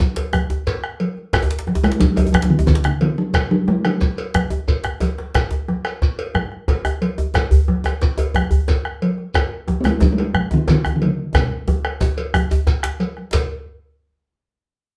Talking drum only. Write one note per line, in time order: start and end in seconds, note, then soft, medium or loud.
0.00 0.45 F#3 medium
1.83 2.01 G#3 loud
2.00 2.16 F#3 loud
2.16 2.32 F#3 loud
2.33 2.45 F#3 loud
2.45 2.51 F#3 medium
2.50 2.66 D#3 loud
2.66 2.87 D#3 loud
2.85 3.04 C#3 medium
3.02 3.20 D#3 medium
3.18 3.50 F#3 loud
3.51 3.69 F#3 loud
3.68 3.87 G#3 loud
3.85 5.19 F#3 loud
9.81 9.87 B3 medium
9.86 10.01 G#3 loud
10.02 10.06 F#3 loud
10.12 10.21 G#3 medium
10.20 10.55 F#3 loud
10.54 10.69 D#3 loud
10.70 10.96 D#3 loud
10.96 11.04 D#3 medium
11.03 11.39 C#3 loud
11.38 13.02 B2 medium